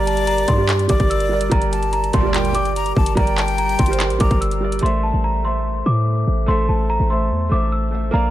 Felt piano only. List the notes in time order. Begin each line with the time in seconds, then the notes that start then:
Already playing: G3 G4 A#4 D5
0.57 G3 G4 A#4 D5
0.88 G3 G4 A#4 D5
1.29 G3 G4 A#4 D5
1.49 G3 G4 A#4 D5
2.23 G3 G4 A#4 D5
2.53 G3 G4 A#4 D5
3.15 G3 G4 A#4 D5
3.88 G3 G4 A#4 C5
4.18 G3 G4 A#4 D5
4.60 G3 G4 A#4 D5
4.81 A3 A4 C5 E5
5.43 A3 A4 C5 E5
6.46 A3 A4 C5 E5
7.09 A3 A4 C5 E5
7.49 A3 A4 C5 E5
7.91 A3 A4 C5 E5
8.11 A#3 A#4 D5 F5